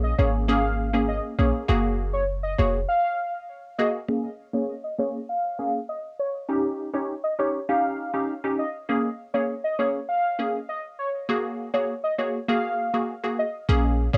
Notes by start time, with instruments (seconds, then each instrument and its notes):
Already playing: 808-style bass A#1, synth stab A#3 C#4 G#4
0.04 soft synth lead D#5
0.18 808-style bass G#1, synth stab A#3 C#4 G#4, soft synth lead C#5
0.48 synth stab A#3 C#4 G#4, soft synth lead F5
0.94 synth stab A#3 C#4 G#4
1.09 soft synth lead D#5
1.39 808-style bass A#1, synth stab A#3 C#4 G#4, soft synth lead C#5
1.68 808-style bass F#1, synth stab A#3 F#4 G#4
2.13 soft synth lead C#5
2.43 soft synth lead D#5
2.58 808-style bass F1, synth stab A#3 F#4 G#4, soft synth lead C#5
2.88 soft synth lead F5
3.78 synth stab A#3 F#4 G#4, soft synth lead D#5
4.08 synth stab A#3 C#4 G#4
4.53 synth stab A#3 C#4 G#4, soft synth lead C#5
4.84 soft synth lead D#5
4.98 synth stab A#3 C#4 G#4, soft synth lead C#5
5.29 soft synth lead F5
5.59 synth stab A#3 C#4 G#4
5.89 soft synth lead D#5
6.19 soft synth lead C#5
6.49 synth stab C#4 D#4 G4
6.94 synth stab C#4 D#4 G4, soft synth lead C#5
7.24 soft synth lead D#5
7.39 synth stab C#4 D#4 G4, soft synth lead C#5
7.69 synth stab C#4 D#4 G4, soft synth lead F5
8.14 synth stab C#4 D#4 G4
8.44 synth stab C#4 D#4 G4
8.59 soft synth lead D#5
8.89 synth stab A#3 C#4 G#4
9.34 synth stab A#3 C#4 G#4, soft synth lead C#5
9.64 soft synth lead D#5
9.79 synth stab A#3 C#4 G#4, soft synth lead C#5
10.09 soft synth lead F5
10.39 synth stab A#3 C#4 G#4
10.69 soft synth lead D#5
10.99 soft synth lead C#5
11.29 synth stab A#3 F#4 G#4
11.74 synth stab A#3 F#4 G#4, soft synth lead C#5
12.04 soft synth lead D#5
12.19 synth stab A#3 F#4 G#4, soft synth lead C#5
12.48 synth stab A#3 F#4 G#4, soft synth lead F5
12.94 synth stab A#3 F#4 G#4
13.24 synth stab A#3 F#4 G#4
13.39 soft synth lead D#5
13.69 808-style bass A#1, synth stab A#3 C#4 G#4
14.14 808-style bass A#1, synth stab A#3 C#4 G#4, soft synth lead C#5